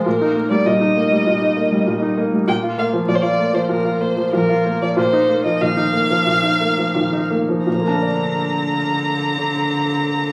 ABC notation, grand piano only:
X:1
M:4/4
L:1/16
Q:1/4=93
K:Bb
V:1 name="Grand piano"
B,, E B, G, B,, E B, G, B,, E B, G, B,, E B, G, | B,, F B, F, B,, F B, F, B,, F B, F, B,, F B, F, | B,, E B, F, B,, E B, F, B,, E B, F, B,, E B, F, | [B,,F,B,DBd]16 |]